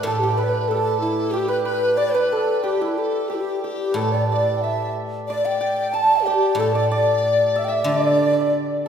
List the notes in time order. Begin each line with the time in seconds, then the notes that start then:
Already playing: G4 B4 D5 E5
0.03 A2 A4
0.20 G4
0.36 B4
0.44 D5
0.49 B4
0.64 B4
0.68 A4
0.74 G4
0.81 A4
1.01 E4
1.31 G4
1.48 B4
1.63 B4
1.95 D5
2.12 B4
2.32 A4
2.63 G4
2.82 E4
2.88 B4
2.95 A4
3.28 G4
3.33 E4 G4
3.41 G4
3.59 G4
3.64 G4
3.92 A2 A4 B4
3.96 A4
4.12 D5
4.28 D5
4.32 D5
4.56 G5
4.62 E5
5.27 D5
5.45 G5
5.61 G5
5.91 A5
6.23 G4
6.27 G4
6.55 A2 A4
6.60 A4
6.73 D5
6.89 D5
7.56 E5
7.64 E5 G5
7.69 E5
7.84 D3 D5
7.91 D5
8.02 D5
8.12 D5
8.19 D5
8.26 D5
8.33 D5
8.41 D5